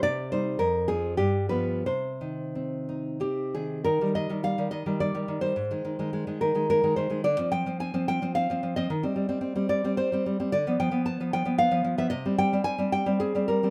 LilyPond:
\new Staff \with { instrumentName = "Nylon-string guitar" } { \clef bass \time 3/4 \key c \minor \tempo 4 = 108 << { d''8 c''8 bes'8 aes'8 g'8 b'8 | c''2 g'8 aes'8 | bes'8 ees''8 f''8 ees''8 d''8. c''16~ | c''4. bes'8 bes'8 c''8 |
d''8 g''8 aes''8 g''8 f''8. ees''16~ | ees''4. d''8 c''8 r8 | d''8 g''8 a''8 g''8 f''8. e''16 | ees''8 g''8 aes''8 g''8 aes'8 bes'8 | } \\ { c8 <g ees'>8 f,8 <f c'>8 g,8 <f b>8 | c8 ees8 c'8 ees'8 c'8 ees8 | ees16 g16 ees16 <ees g>16 g16 <ees g>16 ees16 <ees g>16 g16 <ees g>16 ees16 <ees g>16 | aes,16 <ees aes>16 ees16 <ees aes>16 aes16 <ees aes>16 ees16 <ees aes>16 aes16 <ees aes>16 ees16 <ees aes>16 |
d16 <f c'>16 f16 <f c'>16 c'16 <f c'>16 f16 <f c'>16 c'16 <f c'>16 f16 <f c'>16 | ees16 <g c'>16 g16 <g c'>16 c'16 <g c'>16 g16 <g c'>16 c'16 <g c'>16 g16 <g c'>16 | d16 <f b>16 f16 <f b>16 b16 <f b>16 f16 <f b>16 b16 <f b>16 f16 <f b>16 | c16 <g c'>16 g16 <g c'>16 c'16 <g c'>16 g16 <g c'>16 c'16 <g c'>16 g16 <g c'>16 | } >> }